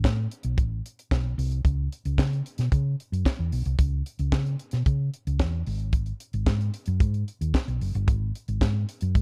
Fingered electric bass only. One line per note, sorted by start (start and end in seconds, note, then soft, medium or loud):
0.04 0.26 A2 loud
0.44 0.58 B1 medium
0.58 0.80 A1 medium
1.11 1.33 B1 medium
1.38 1.60 C2 loud
1.65 1.87 C#2 medium
2.05 2.16 C#2 medium
2.19 2.41 C#3 loud
2.59 2.70 B2 medium
2.72 2.94 C#3 loud
3.12 3.23 F#2 medium
3.39 3.50 E2 medium
3.53 3.64 B1 medium
3.66 3.77 C2 medium
3.79 4.01 C#2 medium
4.19 4.30 C#2 medium
4.32 4.55 C#3 loud
4.73 4.84 B2 medium
4.86 5.08 C#3 loud
5.27 5.38 C#2 medium
5.40 5.62 E2 medium
5.67 6.11 G#1 loud
6.34 6.45 G#1 medium
6.47 6.69 G#2 loud
6.87 6.98 F#2 medium
7.01 7.23 G#2 loud
7.41 7.52 D#2 medium
7.68 7.79 B1 medium
7.81 7.92 F#1 medium
7.95 8.08 G1 loud
8.08 8.30 G#1 loud
8.48 8.59 G#1 medium
8.61 8.84 G#2 medium
9.02 9.13 F#2 medium
9.15 9.22 G#2 loud